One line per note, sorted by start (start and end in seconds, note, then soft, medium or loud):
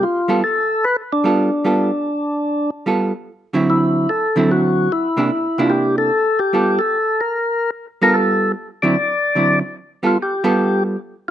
0.03 0.41 F4 medium
0.28 0.41 G3 medium
0.28 0.41 B3 medium
0.28 0.41 F4 medium
0.28 0.42 A4 medium
0.44 0.85 A4 medium
0.84 0.97 B4 loud
1.13 2.70 D4 medium
1.24 1.49 G3 medium
1.24 1.49 B3 medium
1.24 1.49 F4 medium
1.24 1.50 A4 medium
1.64 1.89 G3 medium
1.64 1.90 B3 medium
1.64 1.90 F4 medium
1.64 1.90 A4 medium
2.86 3.11 G3 medium
2.86 3.11 B3 medium
2.86 3.12 F4 medium
2.86 3.12 A4 medium
3.53 4.05 D3 medium
3.53 4.06 F#3 medium
3.53 4.06 C4 medium
3.53 4.06 E4 medium
3.70 4.11 E4 medium
4.09 4.51 A4 medium
4.36 4.87 D3 medium
4.36 4.88 F#3 medium
4.36 4.88 C4 medium
4.36 4.88 E4 medium
4.51 4.92 F#4 medium
4.92 5.61 E4 medium
5.17 5.29 C3 medium
5.17 5.29 A#3 medium
5.17 5.30 D4 medium
5.17 5.30 E4 medium
5.58 6.09 C3 medium
5.58 6.10 A#3 medium
5.58 6.10 D4 medium
5.58 6.10 E4 medium
5.58 5.72 F4 medium
5.70 5.96 G4 medium
5.98 6.40 A4 loud
6.39 6.81 G4 medium
6.53 6.77 G3 medium
6.53 6.78 B3 soft
6.53 6.78 F4 medium
6.53 6.78 A4 medium
6.79 7.21 A4 loud
7.21 7.71 A#4 medium
8.02 8.53 G3 medium
8.02 8.53 B3 medium
8.02 8.53 F4 medium
8.02 8.53 A4 medium
8.02 8.16 A#4 medium
8.14 8.52 A4 loud
8.82 8.95 D3 medium
8.82 8.95 F#3 medium
8.82 8.95 C4 medium
8.82 8.95 E4 medium
8.82 9.59 D5 medium
9.35 9.60 D3 medium
9.35 9.61 F#3 medium
9.35 9.61 C4 soft
9.35 9.61 E4 medium
10.03 10.15 G3 medium
10.03 10.16 B3 medium
10.03 10.16 F4 medium
10.03 10.18 F4 medium
10.03 10.16 A4 medium
10.22 10.84 G4 medium
10.44 10.95 G3 medium
10.44 10.96 B3 medium
10.44 10.95 F4 medium
10.44 10.96 A4 medium